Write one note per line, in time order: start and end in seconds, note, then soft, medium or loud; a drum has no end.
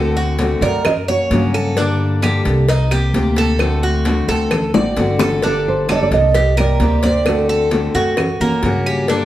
0.00 0.55 D2 loud
0.00 0.39 D3 medium
0.00 0.39 A3 medium
0.00 0.39 C4 medium
0.00 0.39 F#4 medium
0.00 0.15 A4 medium
0.00 0.58 F#5 loud
0.17 0.61 F#4 medium
0.17 high conga soft
0.39 0.61 D3 medium
0.39 0.62 A3 medium
0.39 0.62 C4 medium
0.39 0.62 F#4 medium
0.39 cowbell medium
0.39 high conga loud
0.61 1.26 F#2 loud
0.61 0.85 A3 soft
0.61 0.85 C4 soft
0.61 0.85 F#4 medium
0.61 1.07 A#4 medium
0.61 0.83 D5 medium
0.61 cowbell medium
0.61 high conga soft
0.85 0.92 D#5 medium
0.85 muted steel-string acoustic guitar stroke medium
0.85 cowbell loud
0.85 high conga soft
0.85 low conga medium
0.85 claves medium
1.08 1.31 A#3 soft
1.08 1.31 C#4 soft
1.08 1.30 F#4 medium
1.08 1.53 C#5 medium
1.08 1.51 C#5 medium
1.08 high conga soft
1.31 2.39 G2 loud
1.31 1.76 C#3 medium
1.31 1.77 F#3 medium
1.31 1.77 A#3 medium
1.31 1.77 C#4 medium
1.31 1.77 F#4 medium
1.31 cowbell medium
1.31 high conga medium
1.54 1.76 A4 medium
1.54 claves medium
1.77 2.21 D3 medium
1.77 2.22 G3 medium
1.77 2.23 A#3 medium
1.77 2.22 D4 medium
1.77 2.23 A4 medium
1.77 cowbell loud
1.77 high conga soft
2.00 high conga soft
2.22 2.45 D3 medium
2.22 2.45 G3 medium
2.22 2.45 A#3 medium
2.22 2.45 D4 medium
2.22 2.68 G4 medium
2.22 2.44 A4 medium
2.22 cowbell medium
2.22 high conga loud
2.22 claves medium
2.45 3.10 C2 loud
2.45 2.68 A#3 soft
2.45 2.68 D4 medium
2.45 2.67 A4 medium
2.45 cowbell medium
2.45 high conga soft
2.68 2.91 D#4 medium
2.68 muted steel-string acoustic guitar stroke medium
2.68 cowbell loud
2.68 high conga soft
2.91 3.13 A#3 soft
2.91 3.14 C4 soft
2.91 3.13 G4 soft
2.91 3.36 G4 medium
2.91 cowbell medium
2.91 high conga soft
2.91 claves medium
3.14 4.22 D2 medium
3.14 3.59 C3 medium
3.14 3.59 A#3 medium
3.14 3.60 C4 medium
3.14 3.60 G4 medium
3.14 cowbell medium
3.14 high conga medium
3.36 3.82 A4 medium
3.36 cowbell medium
3.36 high conga medium
3.59 4.05 D3 medium
3.59 4.05 A3 medium
3.59 4.05 C4 medium
3.59 4.05 F#4 medium
3.59 cowbell loud
3.59 high conga soft
3.59 claves medium
3.83 4.28 F#4 medium
3.83 high conga soft
4.05 4.28 D3 medium
4.05 4.28 A3 medium
4.05 4.29 C4 medium
4.05 4.28 F#4 medium
4.05 cowbell medium
4.05 high conga loud
4.28 4.71 D2 loud
4.28 4.51 A3 soft
4.28 4.51 C4 soft
4.28 4.51 F#4 medium
4.28 4.73 A4 medium
4.28 cowbell medium
4.28 high conga soft
4.51 muted steel-string acoustic guitar stroke medium
4.51 cowbell loud
4.51 high conga soft
4.51 low conga medium
4.51 claves medium
4.74 4.96 A1 medium
4.74 4.97 A3 soft
4.74 4.97 C4 soft
4.74 4.97 F#4 medium
4.74 5.19 D5 medium
4.74 high bongo medium
4.74 high conga medium
4.97 6.05 G1 medium
4.97 5.42 D3 medium
4.97 5.43 A3 medium
4.97 5.43 C4 medium
4.97 5.43 F#4 medium
4.97 cowbell medium
4.97 high conga loud
5.19 5.42 A4 medium
5.19 low bongo loud
5.19 low conga medium
5.19 claves medium
5.42 5.88 D3 medium
5.42 5.88 G3 medium
5.42 5.88 A#3 medium
5.42 5.88 D4 medium
5.42 5.89 A4 medium
5.42 5.66 A4 loud
5.42 cowbell loud
5.42 high conga soft
5.66 5.89 C5 loud
5.66 high conga soft
5.89 6.11 D3 medium
5.89 6.11 G3 medium
5.89 6.11 A#3 medium
5.89 6.11 D4 medium
5.89 6.33 A4 medium
5.89 6.11 A4 medium
5.89 5.95 D5 loud
5.89 cowbell medium
5.89 high conga loud
5.89 claves medium
5.95 6.01 D#5 medium
6.03 6.12 D5 loud
6.11 6.76 C2 loud
6.11 6.34 A#3 soft
6.11 6.34 D4 medium
6.11 6.34 A4 medium
6.11 6.56 D#5 loud
6.11 cowbell medium
6.11 high conga soft
6.35 6.57 G4 medium
6.35 muted steel-string acoustic guitar stroke medium
6.35 cowbell loud
6.35 high conga soft
6.57 6.80 A#3 soft
6.57 6.80 C4 soft
6.57 6.80 G4 medium
6.57 7.02 A#4 medium
6.57 7.02 D5 loud
6.57 cowbell medium
6.57 high conga soft
6.57 claves medium
6.80 7.88 D2 loud
6.80 7.26 C3 medium
6.80 7.26 A#3 medium
6.80 7.26 C4 medium
6.80 7.26 G4 medium
6.80 cowbell medium
6.80 high conga medium
7.03 7.26 C5 loud
7.03 7.48 D5 medium
7.03 cowbell medium
7.03 high conga medium
7.26 7.70 D3 medium
7.26 7.71 A3 medium
7.26 7.71 C4 medium
7.26 7.71 F#4 medium
7.26 8.84 A4 medium
7.26 cowbell loud
7.26 high conga soft
7.26 claves medium
7.49 7.94 A4 medium
7.49 high conga soft
7.71 7.94 D3 medium
7.71 7.94 A3 medium
7.71 7.94 C4 medium
7.71 7.94 F#4 medium
7.71 cowbell medium
7.71 high conga loud
7.95 8.37 F#2 medium
7.95 8.17 A3 soft
7.95 8.17 C4 medium
7.95 8.39 F#4 medium
7.95 8.17 F#4 medium
7.95 cowbell medium
7.95 high conga soft
8.17 muted steel-string acoustic guitar stroke medium
8.17 cowbell loud
8.17 high conga soft
8.17 low conga medium
8.17 claves medium
8.40 8.62 F#2 medium
8.40 8.85 A#3 medium
8.40 8.63 A#3 soft
8.40 8.63 C#4 soft
8.40 8.63 F#4 medium
8.40 high conga soft
8.40 low conga medium
8.63 9.25 G2 medium
8.63 9.08 C#3 medium
8.63 9.09 F#3 medium
8.63 9.08 A#3 medium
8.63 9.10 C#4 medium
8.63 9.09 F#4 medium
8.63 cowbell medium
8.63 high conga medium
8.86 9.09 G4 medium
8.86 high conga soft
8.86 claves medium
9.08 9.25 D3 medium
9.08 9.25 G3 medium
9.08 9.25 A#3 medium
9.08 9.25 D4 medium
9.08 9.25 A4 medium
9.08 cowbell loud
9.08 high conga soft